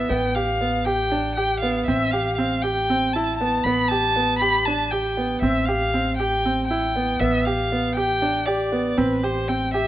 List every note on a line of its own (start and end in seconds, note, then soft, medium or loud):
0.00 0.11 E5 medium
0.09 1.84 A1 medium
0.09 0.31 B3 medium
0.09 0.36 G5 medium
0.35 0.57 G4 medium
0.35 0.86 F5 medium
0.61 0.82 B3 medium
0.84 1.07 G4 medium
0.84 1.35 G5 medium
1.12 1.33 D4 medium
1.35 1.59 G4 medium
1.35 1.60 G5 medium
1.60 1.84 B3 medium
1.60 1.85 F5 medium
1.86 3.62 A1 medium
1.86 2.09 C4 medium
1.86 2.13 E5 medium
2.11 2.34 G4 medium
2.11 2.36 F5 medium
2.36 2.60 C4 medium
2.36 2.63 F5 medium
2.62 2.85 G4 medium
2.62 3.15 G5 medium
2.90 3.11 C4 medium
3.13 3.37 E4 medium
3.13 3.37 A5 medium
3.37 3.62 B3 medium
3.37 3.65 A5 medium
3.63 5.39 A1 medium
3.63 3.87 B3 medium
3.63 3.89 B5 medium
3.88 4.12 G4 medium
3.88 4.38 A5 loud
4.16 4.37 B3 medium
4.39 4.63 G4 medium
4.39 4.66 B5 medium
4.65 4.89 D4 medium
4.65 4.92 A5 medium
4.91 5.14 G4 medium
4.91 5.41 G5 medium
5.17 5.39 B3 medium
5.42 7.17 A1 medium
5.42 5.64 C4 medium
5.42 5.67 E5 medium
5.65 5.90 G4 medium
5.65 6.16 F5 medium
5.94 6.15 C4 medium
6.17 6.41 G4 medium
6.17 6.65 G5 medium
6.45 6.66 C4 medium
6.67 6.92 E4 medium
6.67 7.21 G5 medium
6.96 7.17 B3 medium
7.20 8.94 A1 medium
7.20 7.42 B3 medium
7.20 7.46 E5 medium
7.45 7.68 G4 medium
7.45 7.95 F5 medium
7.72 7.93 B3 medium
7.95 8.18 G4 medium
7.95 8.47 G5 medium
8.22 8.43 D4 medium
8.46 8.69 G4 medium
8.46 8.99 D5 medium
8.72 8.94 B3 medium
8.97 9.87 A1 medium
8.97 9.19 C4 medium
8.97 9.25 B4 medium
9.23 9.45 G4 medium
9.23 9.49 C5 medium
9.48 9.70 C4 medium
9.48 9.73 G5 medium
9.74 9.87 G4 medium
9.74 9.87 E5 medium